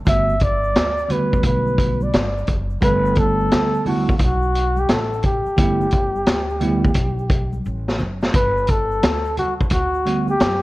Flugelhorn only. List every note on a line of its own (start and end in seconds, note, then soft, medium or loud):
0.09 0.45 E5 loud
0.43 1.13 D5 loud
1.12 1.45 B4 medium
1.46 2.04 B4 medium
2.03 2.49 D5 medium
2.84 3.20 B4 loud
3.19 3.87 A4 loud
3.88 4.14 F#4 medium
4.17 4.25 F4 medium
4.23 4.81 F#4 loud
4.80 4.93 G4 medium
4.92 5.25 A4 medium
5.26 7.62 G4 medium
8.35 8.72 B4 loud
8.70 9.38 A4 loud
9.39 9.54 F#4 medium
9.73 10.25 F#4 loud
10.30 10.62 G4 loud